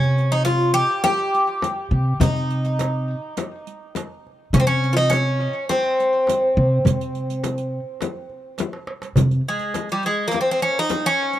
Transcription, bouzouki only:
0, 0, Header, 1, 2, 480
1, 0, Start_track
1, 0, Tempo, 579710
1, 1825, Time_signature, 4, 2, 24, 8
1, 9434, End_track
2, 0, Start_track
2, 0, Title_t, "Bouzouki"
2, 0, Program_c, 0, 25
2, 0, Note_on_c, 0, 61, 89
2, 263, Note_on_c, 0, 63, 82
2, 275, Note_off_c, 0, 61, 0
2, 367, Note_off_c, 0, 63, 0
2, 370, Note_on_c, 0, 65, 88
2, 608, Note_off_c, 0, 65, 0
2, 611, Note_on_c, 0, 67, 105
2, 849, Note_off_c, 0, 67, 0
2, 859, Note_on_c, 0, 67, 105
2, 1827, Note_off_c, 0, 67, 0
2, 1830, Note_on_c, 0, 63, 78
2, 2756, Note_off_c, 0, 63, 0
2, 3759, Note_on_c, 0, 61, 84
2, 3803, Note_off_c, 0, 61, 0
2, 3806, Note_on_c, 0, 60, 86
2, 3862, Note_off_c, 0, 60, 0
2, 3865, Note_on_c, 0, 61, 91
2, 4081, Note_on_c, 0, 65, 63
2, 4092, Note_off_c, 0, 61, 0
2, 4109, Note_off_c, 0, 65, 0
2, 4112, Note_on_c, 0, 63, 97
2, 4220, Note_on_c, 0, 61, 91
2, 4234, Note_off_c, 0, 63, 0
2, 4672, Note_off_c, 0, 61, 0
2, 4714, Note_on_c, 0, 60, 86
2, 7079, Note_off_c, 0, 60, 0
2, 7853, Note_on_c, 0, 56, 75
2, 8177, Note_off_c, 0, 56, 0
2, 8212, Note_on_c, 0, 55, 79
2, 8313, Note_off_c, 0, 55, 0
2, 8329, Note_on_c, 0, 56, 78
2, 8492, Note_off_c, 0, 56, 0
2, 8509, Note_on_c, 0, 58, 78
2, 8605, Note_off_c, 0, 58, 0
2, 8617, Note_on_c, 0, 60, 74
2, 8690, Note_off_c, 0, 60, 0
2, 8705, Note_on_c, 0, 60, 79
2, 8781, Note_off_c, 0, 60, 0
2, 8796, Note_on_c, 0, 61, 84
2, 8923, Note_off_c, 0, 61, 0
2, 8934, Note_on_c, 0, 63, 88
2, 9159, Note_on_c, 0, 61, 93
2, 9168, Note_off_c, 0, 63, 0
2, 9434, Note_off_c, 0, 61, 0
2, 9434, End_track
0, 0, End_of_file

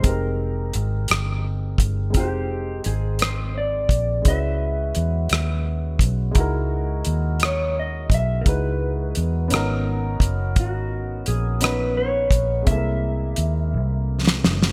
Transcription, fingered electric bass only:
0, 0, Header, 1, 2, 480
1, 0, Start_track
1, 0, Tempo, 701754
1, 27, Time_signature, 6, 3, 24, 8
1, 10070, End_track
2, 0, Start_track
2, 0, Title_t, "Fingered electric bass"
2, 0, Program_c, 0, 33
2, 34, Note_on_c, 0, 29, 92
2, 483, Note_off_c, 0, 29, 0
2, 514, Note_on_c, 0, 32, 82
2, 727, Note_off_c, 0, 32, 0
2, 754, Note_on_c, 0, 31, 78
2, 1203, Note_off_c, 0, 31, 0
2, 1225, Note_on_c, 0, 31, 86
2, 1472, Note_off_c, 0, 31, 0
2, 1472, Note_on_c, 0, 29, 89
2, 1922, Note_off_c, 0, 29, 0
2, 1956, Note_on_c, 0, 32, 82
2, 2644, Note_off_c, 0, 32, 0
2, 2667, Note_on_c, 0, 34, 81
2, 2883, Note_off_c, 0, 34, 0
2, 2914, Note_on_c, 0, 37, 73
2, 3363, Note_off_c, 0, 37, 0
2, 3396, Note_on_c, 0, 40, 90
2, 3608, Note_off_c, 0, 40, 0
2, 3633, Note_on_c, 0, 39, 72
2, 4104, Note_on_c, 0, 35, 76
2, 4115, Note_off_c, 0, 39, 0
2, 4321, Note_off_c, 0, 35, 0
2, 4351, Note_on_c, 0, 37, 86
2, 4801, Note_off_c, 0, 37, 0
2, 4833, Note_on_c, 0, 39, 84
2, 5540, Note_on_c, 0, 35, 68
2, 5551, Note_off_c, 0, 39, 0
2, 5759, Note_off_c, 0, 35, 0
2, 5791, Note_on_c, 0, 37, 80
2, 6241, Note_off_c, 0, 37, 0
2, 6274, Note_on_c, 0, 40, 83
2, 6512, Note_on_c, 0, 32, 97
2, 6522, Note_off_c, 0, 40, 0
2, 6962, Note_off_c, 0, 32, 0
2, 6982, Note_on_c, 0, 30, 74
2, 7229, Note_off_c, 0, 30, 0
2, 7229, Note_on_c, 0, 32, 91
2, 7681, Note_off_c, 0, 32, 0
2, 7714, Note_on_c, 0, 34, 73
2, 8403, Note_off_c, 0, 34, 0
2, 8423, Note_on_c, 0, 34, 80
2, 8641, Note_off_c, 0, 34, 0
2, 8668, Note_on_c, 0, 36, 87
2, 9120, Note_off_c, 0, 36, 0
2, 9151, Note_on_c, 0, 39, 91
2, 9396, Note_on_c, 0, 36, 81
2, 9406, Note_off_c, 0, 39, 0
2, 9875, Note_on_c, 0, 30, 75
2, 9885, Note_off_c, 0, 36, 0
2, 10070, Note_off_c, 0, 30, 0
2, 10070, End_track
0, 0, End_of_file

